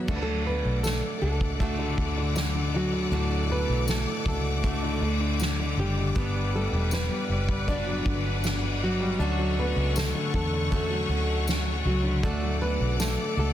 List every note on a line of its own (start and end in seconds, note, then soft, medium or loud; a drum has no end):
0.00 0.10 E3 medium
0.00 0.10 B3 medium
0.08 0.61 D2 loud
0.08 3.11 D3 medium
0.08 1.22 A3 medium
0.08 0.16 A3 medium
0.08 1.22 D4 medium
0.08 3.08 D4 medium
0.08 1.21 F#4 medium
0.08 0.15 A4 loud
0.08 6.12 A4 medium
0.08 6.12 D5 medium
0.08 6.12 F#5 medium
0.08 9.16 D6 medium
0.08 kick loud
0.08 crash loud
0.16 0.22 B4 medium
0.23 0.46 A3 medium
0.23 0.45 A4 loud
0.28 1.76 F#3 medium
0.46 0.83 B3 medium
0.46 0.82 B4 loud
0.46 ride medium
0.65 1.00 B1 medium
0.83 1.20 A3 medium
0.83 1.19 A4 loud
0.83 snare loud
0.83 ride medium
0.83 tambourine medium
1.22 1.94 C#2 medium
1.22 1.59 A3 soft
1.22 2.33 A3 medium
1.22 1.60 D4 soft
1.22 1.60 F#4 medium
1.22 2.32 A4 medium
1.22 ride medium
1.41 kick medium
1.60 3.11 A3 medium
1.60 4.60 A3 medium
1.60 3.13 D4 medium
1.60 3.13 F#4 medium
1.60 kick medium
1.60 ride medium
1.79 1.97 D3 medium
1.97 3.08 D2 loud
1.97 2.16 D3 medium
1.97 kick medium
1.97 ride medium
2.17 2.34 D3 medium
2.35 2.53 D3 medium
2.35 snare loud
2.35 ride medium
2.35 tambourine medium
2.55 2.73 D3 medium
2.74 2.92 D3 medium
2.74 3.47 F#3 medium
2.74 3.51 F#4 medium
2.74 ride soft
2.93 4.41 D3 medium
2.93 ride soft
3.11 3.65 D2 loud
3.11 6.12 A2 medium
3.11 6.15 D3 medium
3.11 4.26 A3 medium
3.11 4.26 D4 medium
3.11 4.25 F#4 medium
3.11 ride medium
3.30 4.79 D4 medium
3.49 4.98 F#3 medium
3.49 3.86 B3 medium
3.49 3.89 B4 loud
3.49 ride medium
3.69 4.04 B1 medium
3.87 4.24 A3 medium
3.87 4.24 A4 loud
3.87 snare loud
3.87 ride medium
3.87 tambourine medium
4.08 ride soft
4.26 4.98 C#2 medium
4.26 4.62 A3 soft
4.26 5.37 A3 medium
4.26 4.63 D4 medium
4.26 4.63 F#4 soft
4.26 5.37 A4 medium
4.26 kick medium
4.26 ride medium
4.64 5.02 A3 medium
4.64 6.12 A3 medium
4.64 5.01 D4 loud
4.64 5.02 F#4 medium
4.64 kick medium
4.64 ride medium
4.83 5.00 D3 medium
5.01 5.73 D2 loud
5.01 5.19 D3 medium
5.01 6.16 A3 soft
5.01 6.17 D4 soft
5.01 ride medium
5.20 5.39 D3 medium
5.40 5.58 D3 medium
5.40 snare medium
5.40 ride medium
5.40 tambourine medium
5.59 5.78 D3 medium
5.77 6.13 F#1 medium
5.77 5.96 D3 medium
5.77 6.51 G3 medium
5.77 6.51 G4 medium
5.77 ride medium
5.98 6.16 D3 medium
6.15 6.69 G1 loud
6.15 7.67 G3 medium
6.15 7.67 B3 medium
6.15 9.16 B3 medium
6.15 7.69 D4 medium
6.15 9.17 B4 medium
6.15 9.17 D5 medium
6.15 13.53 F#5 medium
6.15 kick loud
6.15 ride medium
6.35 6.54 G3 medium
6.53 6.72 G3 medium
6.53 6.90 A3 medium
6.53 6.93 A4 loud
6.53 ride medium
6.72 7.08 E1 medium
6.72 6.91 G3 medium
6.91 7.10 G3 medium
6.91 7.65 B3 medium
6.91 7.65 B4 loud
6.91 snare loud
6.91 ride medium
6.91 tambourine medium
7.12 7.28 G3 medium
7.29 8.02 F#1 medium
7.29 7.48 G3 medium
7.29 ride medium
7.49 8.97 G3 medium
7.49 kick medium
7.68 9.20 B3 medium
7.68 9.16 D4 medium
7.68 8.78 D4 medium
7.68 9.20 D4 medium
7.68 9.21 F#4 medium
7.68 8.85 D5 loud
7.68 kick medium
7.68 ride medium
7.86 9.15 F#3 medium
8.05 9.16 G1 loud
8.05 9.16 D3 medium
8.05 kick medium
8.05 ride medium
8.44 snare loud
8.44 ride medium
8.44 tambourine medium
8.82 9.55 F#3 medium
8.82 9.55 F#4 loud
8.82 ride soft
9.00 9.19 G3 medium
9.19 9.72 D2 loud
9.19 10.72 A3 medium
9.19 10.71 C#4 medium
9.19 12.19 D4 medium
9.19 10.73 F#4 medium
9.19 12.20 A4 medium
9.19 12.21 C#5 medium
9.19 12.21 C#6 medium
9.19 ride medium
9.39 10.87 F#3 medium
9.57 9.94 B3 medium
9.57 9.97 B4 medium
9.57 ride medium
9.76 10.12 C#2 medium
9.96 10.13 D3 medium
9.96 10.32 A3 medium
9.96 10.34 A4 medium
9.96 snare loud
9.96 ride medium
9.96 tambourine medium
10.15 10.32 D3 medium
10.34 11.06 E2 medium
10.34 10.52 D3 medium
10.34 11.45 A3 medium
10.34 11.44 A4 medium
10.34 kick medium
10.34 ride medium
10.53 12.01 D3 medium
10.71 11.10 D3 medium
10.71 12.19 A3 medium
10.71 11.10 A3 medium
10.71 11.10 C#4 medium
10.71 11.09 F#4 medium
10.71 kick medium
10.71 ride medium
10.90 12.19 F#3 medium
11.09 11.81 D2 medium
11.09 12.24 A3 soft
11.09 12.24 C#4 soft
11.09 12.25 F#4 soft
11.09 ride medium
11.47 snare loud
11.47 ride medium
11.47 tambourine medium
11.85 12.21 C#2 medium
11.85 12.22 F#3 medium
11.85 12.25 F#4 medium
11.85 ride medium
12.04 12.22 D3 medium
12.04 ride soft
12.23 12.77 D2 loud
12.23 13.53 D3 medium
12.23 13.38 A3 medium
12.23 12.60 A3 medium
12.23 13.53 D4 medium
12.23 13.38 D4 medium
12.23 13.36 F#4 medium
12.23 13.53 A4 medium
12.23 12.61 A4 loud
12.23 13.53 D5 medium
12.23 13.53 D6 medium
12.23 kick loud
12.23 ride medium
12.42 13.53 F#3 medium
12.61 12.98 B3 medium
12.61 12.99 B4 loud
12.61 ride medium
12.80 13.16 B1 medium
12.99 13.35 A3 medium
12.99 13.35 A4 medium
12.99 snare loud
12.99 ride medium
12.99 tambourine medium
13.37 13.53 C#2 medium
13.37 13.53 A3 soft
13.37 13.53 A3 medium
13.37 13.53 D4 soft
13.37 13.53 F#4 medium
13.37 13.53 A4 medium
13.37 ride medium